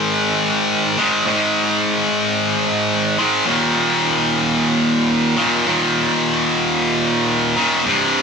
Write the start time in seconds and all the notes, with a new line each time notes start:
Already playing: G#2 D#3 G#3
0.99 G#2 D#3 G#3
1.26 G#2 D#3
1.30 G#3
3.18 G#2 D#3 G#3
3.46 D#2 A#2 D#3
5.37 D#2 A#2 D#3
5.65 D#2 A#2 D#3
7.57 D#2 A#2 D#3
7.84 C2 G2 C3